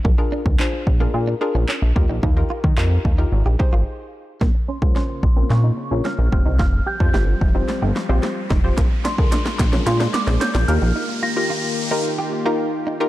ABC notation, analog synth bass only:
X:1
M:4/4
L:1/16
Q:1/4=110
K:Ebmix
V:1 name="Analog synth bass" clef=bass
B,,, z2 =D,, z2 B,,,2 B,,2 z B,,, z B,,, E,, B,,, | E,,2 z E, F,,2 E,,2 A,,, B,,, z A,,, z4 | B,,, z2 D,, z2 B,,,2 B,,2 z B,,, z B,,, F,,, C,, | F,,,2 z F,, G,,,2 F,,,2 z G,,, z B,,, z2 F,,,2 |
B,,, z2 =D,, z2 B,,,2 B,,2 z B,,, z B,,, E,, B,,, | z16 |]